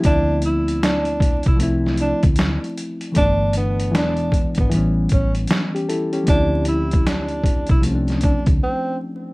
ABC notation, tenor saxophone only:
X:1
M:4/4
L:1/16
Q:"Swing 16ths" 1/4=77
K:Ddor
V:1 name="Tenor saxophone"
D2 E2 D3 E z2 D z4 z | D2 B,2 D3 B, z2 ^C z4 z | D2 E2 D3 E z2 D z C2 z2 |]